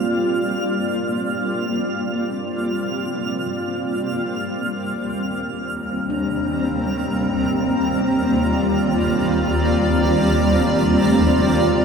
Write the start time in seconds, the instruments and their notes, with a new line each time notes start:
Already playing: ambient pad G3 A#3 C4 F4 D5, handpan G4, synth texture F6
4.41 ambient pad D#2, synth texture F6
5.13 ambient pad G3 C4
5.31 ambient pad A#5
6.10 handpan D4
7.27 ambient pad F4
7.78 ambient pad D5
11.05 handpan A3